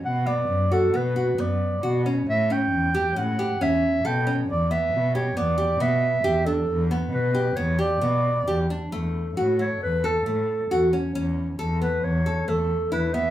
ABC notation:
X:1
M:5/4
L:1/16
Q:1/4=135
K:Edor
V:1 name="Clarinet"
f2 d4 A2 B4 d6 z2 | e2 g6 f4 e4 g3 z | d2 e4 c2 d4 e6 A2- | A2 z2 B4 c2 d8 z2 |
z6 c2 B2 A8 z2 | z6 B2 c4 A4 B2 e2 |]
V:2 name="Nylon-string guitar"
z2 B,4 F2 B,2 F2 B,4 F2 C2 | z2 C4 G2 C2 G2 C4 A2 C2 | z2 B,4 G2 B,2 G2 B,4 G2 D2 | z2 B,4 G2 B,2 G2 B,4 G2 D2 |
A,4 F2 A,4 A2 A,4 F2 C2 | C4 A2 B,4 A2 A,4 E2 B,2 |]
V:3 name="Cello" clef=bass
B,,4 F,,4 B,,4 F,,4 B,,4 | A,,4 E,,4 A,,4 E,,4 B,,4 | E,,4 B,,4 E,,4 B,,4 E,,4 | E,,4 B,,4 E,,4 B,,4 E,,4 |
E,,4 A,,4 E,,4 A,,4 E,,4 | E,,4 E,,4 E,,4 E,,4 E,,4 |]